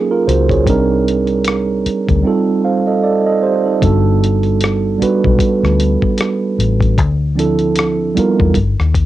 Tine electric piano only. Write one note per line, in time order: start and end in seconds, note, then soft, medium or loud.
0.00 0.68 F#3 medium
0.00 0.68 A#3 medium
0.00 0.68 C#4 medium
0.00 0.10 D#4 soft
0.00 0.12 F4 medium
0.00 0.51 G#4 medium
0.00 0.68 A4 soft
0.00 0.11 A#4 medium
0.11 0.27 F4 medium
0.11 0.26 A#4 medium
0.27 0.49 F#4 medium
0.27 0.49 C5 medium
0.50 0.88 G#4 soft
0.50 0.88 C#5 medium
0.65 0.95 G3 medium
0.65 0.96 C4 medium
0.65 0.96 D4 medium
0.65 0.97 D#4 medium
0.69 0.97 A#4 medium
2.23 2.72 G3 medium
2.23 2.73 C4 medium
2.23 2.64 D#4 medium
2.23 2.64 F4 medium
2.27 2.65 A4 medium
2.64 2.86 C5 soft
2.64 2.86 F5 soft
2.87 3.03 A4 soft
2.87 3.03 D#5 medium
3.03 3.25 A4 soft
3.03 3.25 D5 medium
3.26 3.42 A4 medium
3.26 3.42 D#5 medium
3.43 3.65 G4 soft
3.43 3.65 C5 medium
3.66 4.03 D#4 soft
3.66 3.84 A4 soft
3.80 4.93 G3 medium
3.80 4.94 B3 medium
3.80 4.94 D4 medium
3.80 4.95 F#4 medium
3.85 4.95 A4 medium
4.98 5.29 G3 medium
4.98 5.30 B3 medium
4.98 5.30 D4 medium
4.98 5.31 F#4 medium
5.03 5.31 B4 medium
7.36 7.66 F3 medium
7.36 7.67 C4 medium
7.36 7.67 D4 medium
7.36 7.68 E4 medium
7.40 7.68 A4 medium
8.15 8.45 G3 medium
8.15 8.46 B3 medium
8.15 8.46 D#4 medium
8.15 8.47 F4 medium
8.19 8.47 A#4 medium